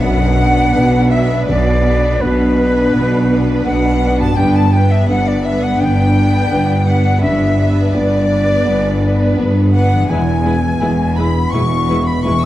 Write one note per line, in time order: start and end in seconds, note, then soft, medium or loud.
0.00 1.49 B1 medium
0.00 0.65 B1 medium
0.00 1.19 F#2 soft
0.00 2.28 B2 medium
0.00 0.65 B2 medium
0.00 0.90 F#3 soft
0.00 0.36 B3 medium
0.00 0.75 B3 soft
0.00 1.44 B3 medium
0.00 2.33 B3 soft
0.00 0.36 D4 soft
0.00 0.76 D4 soft
0.00 1.43 D4 medium
0.00 0.36 B4 medium
0.00 0.76 B4 soft
0.00 1.10 F#5 medium
0.00 1.13 F#5 medium
0.37 1.08 B3 soft
0.37 1.09 D4 medium
0.37 1.09 B4 medium
0.73 1.39 B1 medium
0.73 1.38 B2 medium
0.73 1.44 B3 soft
0.73 1.44 D4 soft
0.73 1.45 B4 soft
1.09 1.82 B3 medium
1.09 1.82 D4 medium
1.09 1.81 B4 medium
1.09 1.46 E5 medium
1.09 1.48 E5 medium
1.47 2.12 B1 medium
1.47 2.19 B1 medium
1.47 2.12 B2 medium
1.47 4.34 B3 medium
1.47 4.34 D4 medium
1.47 2.19 D5 medium
1.47 2.22 D5 medium
1.82 2.55 B3 medium
1.82 2.55 D4 medium
1.82 2.54 B4 medium
2.19 2.84 B1 medium
2.19 2.84 B2 medium
2.19 2.89 B3 soft
2.19 2.89 D4 soft
2.19 3.65 B4 medium
2.19 3.33 B4 medium
2.19 2.90 B4 soft
2.55 3.28 B3 medium
2.55 3.28 D4 soft
2.55 3.26 B4 medium
2.92 3.56 B1 medium
2.92 3.57 B2 medium
2.92 3.64 B3 soft
3.27 4.00 B3 medium
3.27 4.00 D4 medium
3.27 3.99 B4 medium
3.65 4.29 B1 medium
3.65 4.29 B2 medium
3.65 4.34 B3 soft
3.65 4.34 D4 soft
3.65 4.34 B4 medium
3.65 4.22 F#5 medium
3.65 4.20 F#5 medium
4.01 4.35 B3 soft
4.01 4.36 D4 soft
4.01 4.35 B4 soft
4.20 8.10 G2 medium
4.20 4.38 A5 medium
4.25 8.15 B3 soft
4.29 8.19 D4 soft
4.33 5.01 G2 medium
4.33 5.07 G2 medium
4.33 4.72 B3 soft
4.33 4.72 D4 soft
4.33 8.23 B4 soft
4.33 4.72 B4 medium
4.33 4.58 G5 medium
4.37 5.01 G1 medium
4.37 7.05 B3 medium
4.37 7.05 D4 medium
4.37 4.56 G5 medium
4.56 4.73 A5 medium
4.56 4.75 A5 medium
4.73 5.43 B3 medium
4.73 5.43 D4 medium
4.73 5.44 B4 soft
4.73 4.93 G5 medium
4.73 4.91 G5 medium
4.91 5.09 E5 medium
5.08 5.72 G1 medium
5.08 5.73 G2 medium
5.08 5.77 B3 soft
5.08 5.77 D4 soft
5.08 5.77 B4 soft
5.08 5.27 F#5 medium
5.08 5.29 F#5 medium
5.27 5.45 D5 medium
5.27 5.47 D5 medium
5.44 6.15 B3 soft
5.44 6.15 D4 soft
5.44 6.14 B4 medium
5.44 5.63 E5 medium
5.44 5.65 E5 medium
5.63 5.81 F#5 medium
5.63 5.82 F#5 medium
5.80 6.43 G1 medium
5.80 6.44 G2 medium
5.80 6.94 D3 soft
5.80 6.88 G5 medium
6.15 6.87 B3 medium
6.15 6.86 D4 medium
6.15 6.85 B4 medium
6.51 7.14 G1 medium
6.51 7.15 G2 medium
6.51 7.19 B3 soft
6.51 7.19 D4 soft
6.51 7.19 B4 soft
6.86 7.57 B3 soft
6.86 7.57 D4 medium
6.86 7.55 B4 medium
6.86 7.21 F#5 medium
6.86 7.23 F#5 medium
7.21 7.86 G1 medium
7.21 7.92 G2 medium
7.21 7.86 G2 medium
7.21 10.05 B3 medium
7.21 10.05 D4 medium
7.21 7.68 E5 medium
7.21 7.93 E5 medium
7.56 8.29 B3 soft
7.56 8.29 D4 medium
7.56 8.28 B4 medium
7.93 8.57 G1 medium
7.93 8.58 G2 medium
7.93 8.62 B3 soft
7.93 8.62 D4 soft
7.93 8.62 B4 soft
7.93 9.33 D5 medium
7.93 9.37 D5 medium
8.29 9.00 B3 medium
8.29 9.00 D4 medium
8.29 9.00 B4 medium
8.65 9.29 G1 medium
8.65 9.29 G2 medium
8.65 9.36 B3 soft
9.01 9.72 B3 soft
9.01 9.72 D4 medium
9.01 9.71 B4 medium
9.37 10.01 G1 medium
9.37 10.00 G2 medium
9.37 10.05 B3 soft
9.37 10.05 D4 soft
9.37 10.05 B4 medium
9.73 10.09 B3 soft
9.73 10.09 D4 medium
9.73 10.07 B4 medium
9.73 10.07 F#5 medium
9.73 10.11 F#5 medium
9.93 12.45 E3 medium
9.97 12.45 G#3 soft
10.01 12.45 E4 soft
10.06 10.73 E1 medium
10.06 10.73 E2 medium
10.06 10.79 E2 medium
10.06 12.45 B3 medium
10.06 12.45 E4 medium
10.06 12.45 B4 medium
10.06 10.16 B4 medium
10.06 11.18 G#5 medium
10.10 10.18 G#3 medium
10.10 10.19 E4 medium
10.10 11.17 G#5 medium
10.45 10.53 G#3 medium
10.45 10.53 E4 medium
10.45 10.53 B4 soft
10.80 11.44 E1 medium
10.80 11.44 E2 medium
10.80 10.90 G#3 soft
10.80 11.49 G#3 soft
10.80 10.90 E4 medium
10.80 11.49 E4 soft
10.80 10.88 B4 medium
10.80 11.49 B4 medium
11.16 11.27 G#3 soft
11.16 11.27 E4 soft
11.16 11.25 B4 medium
11.16 11.53 B5 medium
11.51 12.16 E1 medium
11.51 12.16 E2 medium
11.51 12.45 B2 soft
11.51 11.62 G#3 medium
11.51 11.62 E4 medium
11.51 11.60 B4 medium
11.51 12.06 C#6 medium
11.51 12.09 C#6 medium
11.88 11.98 G#3 medium
11.88 11.99 E4 medium
11.88 11.96 B4 medium
12.06 12.24 B5 medium
12.23 12.45 E1 medium
12.23 12.45 E2 medium
12.23 12.45 G#3 soft
12.23 12.34 G#3 medium
12.23 12.45 E4 soft
12.23 12.34 E4 medium
12.23 12.31 B4 medium
12.23 12.45 B4 medium
12.23 12.42 C#6 medium
12.23 12.45 C#6 medium
12.42 12.45 E6 medium